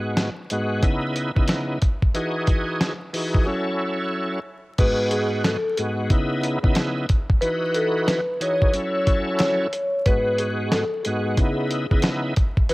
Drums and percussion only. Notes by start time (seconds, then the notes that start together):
0.17 snare, closed hi-hat
0.50 closed hi-hat
0.83 kick, closed hi-hat
1.16 closed hi-hat
1.36 kick
1.48 snare, closed hi-hat
1.82 kick, closed hi-hat
2.02 kick
2.15 closed hi-hat
2.47 kick, closed hi-hat
2.81 snare, closed hi-hat
3.14 open hi-hat
3.35 kick
4.78 kick, closed hi-hat, crash
5.11 closed hi-hat
5.44 snare, closed hi-hat
5.77 closed hi-hat
6.10 kick, closed hi-hat
6.43 closed hi-hat
6.64 kick
6.75 snare, closed hi-hat
7.09 kick, closed hi-hat
7.30 kick
7.42 closed hi-hat
7.74 closed hi-hat
8.08 snare, closed hi-hat
8.41 closed hi-hat
8.62 kick
8.74 closed hi-hat
9.07 kick, closed hi-hat
9.39 snare, closed hi-hat
9.73 closed hi-hat
10.06 kick, closed hi-hat
10.38 closed hi-hat
10.72 snare, closed hi-hat
11.05 closed hi-hat
11.37 kick, closed hi-hat
11.71 closed hi-hat
11.91 kick
12.02 snare, closed hi-hat
12.36 kick, closed hi-hat
12.57 kick
12.69 closed hi-hat